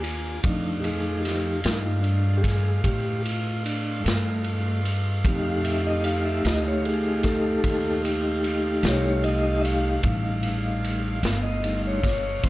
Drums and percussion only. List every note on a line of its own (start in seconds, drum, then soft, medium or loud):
0.04 ride medium
0.44 kick loud
0.44 ride medium
0.84 ride medium
1.25 snare soft
1.25 ride medium
1.64 snare loud
1.64 ride medium
2.04 ride medium
2.44 kick medium
2.44 snare soft
2.44 ride medium
2.84 kick medium
2.84 ride medium
3.26 ride medium
3.66 ride medium
4.06 snare loud
4.06 ride medium
4.44 ride medium
4.85 ride medium
5.25 kick loud
5.25 ride medium
5.65 ride medium
6.04 ride medium
6.45 snare loud
6.45 ride medium
6.85 ride medium
7.23 kick medium
7.23 snare soft
7.23 ride medium
7.64 kick medium
7.64 ride medium
8.05 ride medium
8.44 ride medium
8.83 snare loud
8.83 ride medium
9.24 ride medium
9.65 ride medium
10.03 kick loud
10.03 ride medium
10.43 ride medium
10.84 ride medium
11.23 snare loud
11.23 ride medium
11.64 ride medium
12.04 kick medium
12.04 snare soft
12.04 ride medium
12.43 kick medium
12.43 ride medium